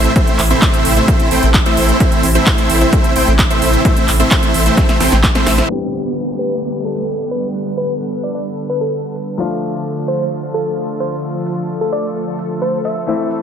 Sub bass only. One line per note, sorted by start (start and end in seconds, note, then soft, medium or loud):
0.39 0.53 A1 loud
0.85 0.99 A1 medium
1.31 1.38 A1 medium
1.43 1.57 A1 loud
1.77 1.91 A1 medium
2.23 2.38 A1 loud
2.70 2.84 A1 medium
3.16 3.23 A1 medium
3.27 3.41 A1 loud
3.62 3.76 A1 medium
4.08 4.22 A1 loud
4.54 4.68 A1 medium
5.00 5.07 A1 medium
5.12 5.26 A1 loud
5.47 5.61 A1 medium